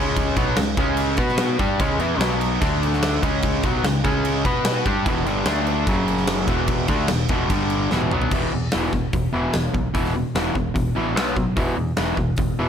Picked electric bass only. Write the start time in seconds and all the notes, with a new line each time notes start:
Already playing: C#2
0.37 B1
0.58 C#2
0.77 C#2
1.18 B2
1.60 G2
1.80 C#2
1.99 E2
2.18 B1
2.62 D2
3.23 C#2
3.64 B1
3.83 C#2
4.05 C#2
4.45 B2
4.86 G2
5.06 E1
5.25 G1
5.46 D2
5.88 F#1
6.47 E1
6.89 D2
7.09 E1
7.29 E1
7.50 G1
7.92 E1
8.13 B1
8.32 E1
8.54 E2
8.74 E1
8.93 E1
9.13 E1
9.35 E1
9.55 E1
9.74 B1
9.94 E1
10.35 E1
10.56 E1
10.76 E1
10.97 A1
11.16 B1
11.57 E1
11.77 E2
11.99 E1
12.18 E1
12.38 E1
12.59 E1